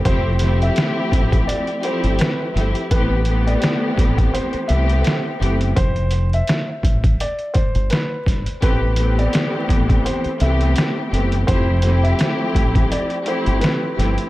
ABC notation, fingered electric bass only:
X:1
M:4/4
L:1/16
Q:"Swing 16ths" 1/4=84
K:Flyd
V:1 name="Fingered electric bass" clef=bass
F,,,4 z2 A,,,2 z3 G,,, z2 G,,, z | A,,,4 z2 A,,,2 z2 C,,2 z2 ^F,,,2 | F,,,4 z2 A,,,2 z3 G,,, z2 G,,, z | A,,,4 z2 A,,,2 z2 C,,2 z2 ^F,,,2 |
F,,,4 z2 A,,,2 z3 G,,, z2 G,,, z |]